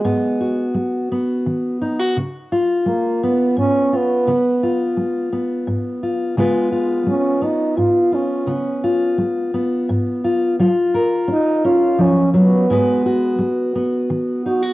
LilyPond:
<<
  \new Staff \with { instrumentName = "French horn" } { \time 3/4 \key cis \mixolydian \tempo 4 = 86 gis4 r2 | r4 ais8 b8 cis'8 b8~ | b4 r2 | r4 cis'8 dis'8 eis'8 cis'8~ |
cis'4 r2 | r4 dis'8 eis'8 cis'8 b8~ | b4 r4. fis'8 | }
  \new Staff \with { instrumentName = "Steel-string acoustic guitar" } { \time 3/4 \key cis \mixolydian << { b8 fis'4 b4 dis'16 fis'16 | r8 eis'4 b4 eis'8 | b8 eis'4 b4 eis'8 | <gis b eis' b'>8 eis'4 b4 eis'8 |
b8 eis'4 b4 eis'8 | eis'8 ais'4 cis'4. | <gis b fis' b'>8 fis'4 b4 dis'16 fis'16 | } \\ { gis,4 gis4 dis4 | cis4 gis4 gis,4 | cis4 gis4 gis,4 | cis4 gis4 gis,4 |
cis4 gis4 gis,4 | fis4 cis'8 r8 eis8 fis8 | gis,4 gis4 dis4 | } >> }
>>